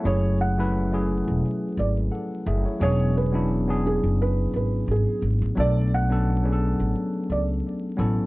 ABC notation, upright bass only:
X:1
M:4/4
L:1/16
Q:"Swing 16ths" 1/4=87
K:Bdor
V:1 name="Upright bass" clef=bass
F,,,6- F,,, E,,, z2 G,,,2 z2 F,,, z | E,,,6- E,,, F,,,3 G,,,2 G,,, z G,,, A,,, | B,,,6- B,,, A,,, z2 C,,2 z2 A,,, z |]